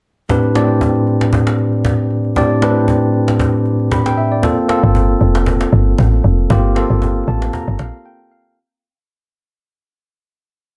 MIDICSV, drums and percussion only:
0, 0, Header, 1, 2, 480
1, 0, Start_track
1, 0, Tempo, 517241
1, 274, Time_signature, 4, 2, 24, 8
1, 9993, End_track
2, 0, Start_track
2, 0, Title_t, "Cajon"
2, 273, Note_on_c, 9, 36, 114
2, 366, Note_off_c, 9, 36, 0
2, 398, Note_on_c, 9, 38, 27
2, 491, Note_off_c, 9, 38, 0
2, 514, Note_on_c, 9, 38, 84
2, 607, Note_off_c, 9, 38, 0
2, 646, Note_on_c, 9, 38, 29
2, 739, Note_off_c, 9, 38, 0
2, 753, Note_on_c, 9, 36, 91
2, 846, Note_off_c, 9, 36, 0
2, 884, Note_on_c, 9, 38, 25
2, 976, Note_off_c, 9, 38, 0
2, 993, Note_on_c, 9, 38, 48
2, 1086, Note_off_c, 9, 38, 0
2, 1124, Note_on_c, 9, 38, 87
2, 1217, Note_off_c, 9, 38, 0
2, 1231, Note_on_c, 9, 36, 111
2, 1324, Note_off_c, 9, 36, 0
2, 1362, Note_on_c, 9, 38, 85
2, 1455, Note_off_c, 9, 38, 0
2, 1471, Note_on_c, 9, 38, 48
2, 1563, Note_off_c, 9, 38, 0
2, 1603, Note_on_c, 9, 38, 24
2, 1695, Note_off_c, 9, 38, 0
2, 1713, Note_on_c, 9, 36, 91
2, 1713, Note_on_c, 9, 38, 80
2, 1806, Note_off_c, 9, 36, 0
2, 1806, Note_off_c, 9, 38, 0
2, 1843, Note_on_c, 9, 38, 30
2, 1936, Note_off_c, 9, 38, 0
2, 1953, Note_on_c, 9, 38, 44
2, 2046, Note_off_c, 9, 38, 0
2, 2084, Note_on_c, 9, 38, 27
2, 2177, Note_off_c, 9, 38, 0
2, 2192, Note_on_c, 9, 36, 115
2, 2285, Note_off_c, 9, 36, 0
2, 2317, Note_on_c, 9, 38, 27
2, 2410, Note_off_c, 9, 38, 0
2, 2433, Note_on_c, 9, 38, 85
2, 2525, Note_off_c, 9, 38, 0
2, 2565, Note_on_c, 9, 38, 29
2, 2658, Note_off_c, 9, 38, 0
2, 2672, Note_on_c, 9, 36, 87
2, 2765, Note_off_c, 9, 36, 0
2, 2803, Note_on_c, 9, 38, 26
2, 2896, Note_off_c, 9, 38, 0
2, 2913, Note_on_c, 9, 38, 48
2, 3006, Note_off_c, 9, 38, 0
2, 3043, Note_on_c, 9, 38, 85
2, 3136, Note_off_c, 9, 38, 0
2, 3151, Note_on_c, 9, 36, 109
2, 3243, Note_off_c, 9, 36, 0
2, 3292, Note_on_c, 9, 38, 26
2, 3385, Note_off_c, 9, 38, 0
2, 3391, Note_on_c, 9, 38, 48
2, 3484, Note_off_c, 9, 38, 0
2, 3523, Note_on_c, 9, 38, 24
2, 3615, Note_off_c, 9, 38, 0
2, 3633, Note_on_c, 9, 36, 91
2, 3633, Note_on_c, 9, 38, 82
2, 3726, Note_off_c, 9, 36, 0
2, 3726, Note_off_c, 9, 38, 0
2, 3767, Note_on_c, 9, 38, 93
2, 3860, Note_off_c, 9, 38, 0
2, 3874, Note_on_c, 9, 38, 44
2, 3967, Note_off_c, 9, 38, 0
2, 4005, Note_on_c, 9, 38, 28
2, 4098, Note_off_c, 9, 38, 0
2, 4113, Note_on_c, 9, 36, 118
2, 4206, Note_off_c, 9, 36, 0
2, 4238, Note_on_c, 9, 38, 28
2, 4330, Note_off_c, 9, 38, 0
2, 4354, Note_on_c, 9, 38, 90
2, 4447, Note_off_c, 9, 38, 0
2, 4486, Note_on_c, 9, 38, 31
2, 4579, Note_off_c, 9, 38, 0
2, 4593, Note_on_c, 9, 36, 91
2, 4686, Note_off_c, 9, 36, 0
2, 4724, Note_on_c, 9, 38, 27
2, 4817, Note_off_c, 9, 38, 0
2, 4834, Note_on_c, 9, 38, 47
2, 4926, Note_off_c, 9, 38, 0
2, 4964, Note_on_c, 9, 38, 85
2, 5057, Note_off_c, 9, 38, 0
2, 5071, Note_on_c, 9, 36, 111
2, 5164, Note_off_c, 9, 36, 0
2, 5203, Note_on_c, 9, 38, 81
2, 5296, Note_off_c, 9, 38, 0
2, 5311, Note_on_c, 9, 38, 50
2, 5404, Note_off_c, 9, 38, 0
2, 5443, Note_on_c, 9, 38, 24
2, 5536, Note_off_c, 9, 38, 0
2, 5554, Note_on_c, 9, 36, 95
2, 5554, Note_on_c, 9, 38, 81
2, 5646, Note_off_c, 9, 38, 0
2, 5647, Note_off_c, 9, 36, 0
2, 5683, Note_on_c, 9, 38, 31
2, 5776, Note_off_c, 9, 38, 0
2, 5794, Note_on_c, 9, 38, 46
2, 5887, Note_off_c, 9, 38, 0
2, 5925, Note_on_c, 9, 38, 26
2, 6018, Note_off_c, 9, 38, 0
2, 6033, Note_on_c, 9, 36, 124
2, 6126, Note_off_c, 9, 36, 0
2, 6158, Note_on_c, 9, 38, 28
2, 6250, Note_off_c, 9, 38, 0
2, 6274, Note_on_c, 9, 38, 90
2, 6367, Note_off_c, 9, 38, 0
2, 6406, Note_on_c, 9, 38, 30
2, 6499, Note_off_c, 9, 38, 0
2, 6513, Note_on_c, 9, 36, 90
2, 6606, Note_off_c, 9, 36, 0
2, 6644, Note_on_c, 9, 38, 26
2, 6737, Note_off_c, 9, 38, 0
2, 6754, Note_on_c, 9, 38, 51
2, 6847, Note_off_c, 9, 38, 0
2, 6885, Note_on_c, 9, 38, 86
2, 6977, Note_off_c, 9, 38, 0
2, 6991, Note_on_c, 9, 36, 110
2, 7084, Note_off_c, 9, 36, 0
2, 7133, Note_on_c, 9, 38, 26
2, 7225, Note_off_c, 9, 38, 0
2, 7229, Note_on_c, 9, 38, 93
2, 7322, Note_off_c, 9, 38, 0
2, 7363, Note_on_c, 9, 38, 24
2, 7456, Note_off_c, 9, 38, 0
2, 9993, End_track
0, 0, End_of_file